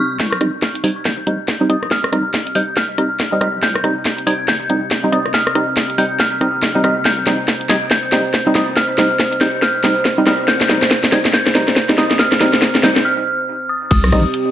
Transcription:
Already playing: analog synth pad C4 G4, synth bell C#6
0.19 wobble bass C2, analog synth pad C4 G4, synth bell G6, kick, snare
0.32 cross-stick
0.41 wobble bass A#1, synth stab G3 C4 D#4, cross-stick, closed hi-hat
0.62 kick, snare
0.75 closed hi-hat
0.84 synth stab G3 C4 D#4, synth bell G#6, open hi-hat
1.05 wobble bass G1, synth bell G6, kick, snare
1.27 wobble bass C2, synth stab G3 C4 D#4, closed hi-hat
1.48 kick, snare
1.61 synth stab G3 C4 D#4
1.69 synth stab G3 C4 D#4, synth bell D#6, closed hi-hat
1.83 wobble bass C2, cross-stick
1.91 synth bell F6, kick, snare
2.04 cross-stick
2.12 wobble bass A#1, synth stab G3 C4 D#4, cross-stick, closed hi-hat
2.34 kick, snare
2.47 closed hi-hat
2.55 synth stab G3 C4 D#4, synth bell G6, open hi-hat
2.77 synth bell F6, kick, snare
2.98 synth stab G3 C4 D#4, cross-stick, closed hi-hat
3.20 kick, snare
3.32 synth stab G3 C4 D#4
3.41 wobble bass C2, synth stab G3 C4 D#4, synth bell F6, cross-stick, closed hi-hat
3.63 wobble bass C2, synth bell G6, kick, snare
3.75 cross-stick
3.84 wobble bass A#1, synth stab G3 C4 D#4, cross-stick, closed hi-hat
4.05 kick, snare
4.18 closed hi-hat
4.27 synth stab G3 C4 D#4, synth bell G#6, open hi-hat
4.48 wobble bass G1, synth bell G6, kick, snare
4.69 wobble bass C2, synth stab G3 C4 D#4, closed hi-hat
4.91 kick, snare
5.04 synth stab G3 C4 D#4
5.12 synth stab G3 C4 D#4, synth bell D#6, closed hi-hat
5.25 wobble bass C2, cross-stick
5.34 synth bell F6, kick, snare
5.47 cross-stick
5.55 wobble bass A#1, synth stab G3 C4 D#4, cross-stick, closed hi-hat
5.77 kick, snare
5.90 closed hi-hat
5.98 synth stab G3 C4 D#4, synth bell G6, open hi-hat
6.19 synth bell F6, kick, snare
6.41 synth stab G3 C4 D#4, cross-stick, closed hi-hat
6.54 wobble bass G1
6.63 wobble bass A#1, kick, snare
6.75 synth stab G3 C4 D#4
6.84 wobble bass G1, synth stab G3 C4 D#4, synth bell F6, cross-stick, closed hi-hat
7.05 wobble bass C2, analog synth pad C5, synth bell G6, kick, snare
7.27 wobble bass A#1, synth stab G3 C4 D#4, snare, closed hi-hat
7.48 kick, snare
7.61 closed hi-hat
7.69 synth stab G3 C4 D#4, synth bell G#6, snare, open hi-hat
7.91 wobble bass G1, synth bell G6, kick, snare
8.12 wobble bass C2, synth stab G3 C4 D#4, snare, closed hi-hat
8.34 kick, snare
8.47 synth stab G3 C4 D#4
8.55 synth stab G3 C4 D#4, synth bell D#6, snare, closed hi-hat
8.68 wobble bass C2
8.76 synth bell F6, kick, snare
8.98 wobble bass A#1, synth stab G3 C4 D#4, snare, closed hi-hat
9.20 kick, snare
9.33 closed hi-hat
9.41 synth stab G3 C4 D#4, synth bell G6, snare, open hi-hat
9.62 synth bell F6, kick, snare
9.84 synth stab G3 C4 D#4, snare, closed hi-hat
10.05 kick, snare
10.18 synth stab G3 C4 D#4
10.27 wobble bass C2, synth stab G3 C4 D#4, synth bell F6, snare, closed hi-hat
10.48 wobble bass C2, synth bell G6, kick, snare
10.61 snare
10.69 wobble bass A#1, synth stab G3 C4 D#4, snare, closed hi-hat
10.82 snare
10.91 kick, snare
11.04 snare, closed hi-hat
11.12 synth stab G3 C4 D#4, synth bell G#6, snare, open hi-hat
11.25 snare
11.34 wobble bass G1, synth bell G6, kick, snare
11.47 snare
11.55 wobble bass C2, synth stab G3 C4 D#4, snare, closed hi-hat
11.68 snare
11.76 kick, snare
11.89 synth stab G3 C4 D#4, snare
11.98 synth stab G3 C4 D#4, synth bell D#6, snare, closed hi-hat
12.11 wobble bass C2, snare
12.19 synth bell F6, kick, snare
12.32 snare
12.41 wobble bass A#1, synth stab G3 C4 D#4, snare, closed hi-hat
12.53 snare
12.62 kick, snare
12.75 snare, closed hi-hat
12.83 synth stab G3 C4 D#4, synth bell G6, snare, open hi-hat
12.96 snare
13.05 synth bell F6
13.69 synth bell D#6
13.91 wobble bass C2, analog synth pad C4 G4, synth bell D#6, kick, closed hi-hat, crash
14.04 cross-stick
14.12 wobble bass A#1, synth stab G3 C4 D#4, cross-stick, closed hi-hat
14.34 closed hi-hat

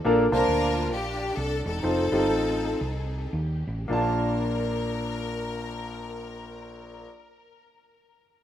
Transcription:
0.05 fingered electric bass A#1, grand piano A#2 A#3 D4 F4 A4 A#4
0.32 fingered electric bass C2, grand piano A#3 D4 F4 C5 A5, string section D4 F4 A#4
0.48 fingered electric bass D2
0.92 fingered electric bass A#1, string section D4 G4
1.36 fingered electric bass C2, string section A4
1.66 fingered electric bass E1, string section C4 D#4 A4
1.83 fingered electric bass F1, grand piano C4 D#4 F4 A4 C5
2.12 fingered electric bass G1, grand piano C4 D#4 F4 G4 C5
2.18 grand piano A4
2.31 fingered electric bass A1
2.81 fingered electric bass C2
3.33 fingered electric bass D#2
3.67 fingered electric bass A1
3.88 fingered electric bass A#1, grand piano A#1 A#3 D4 F4, string section A#4
3.93 grand piano A5

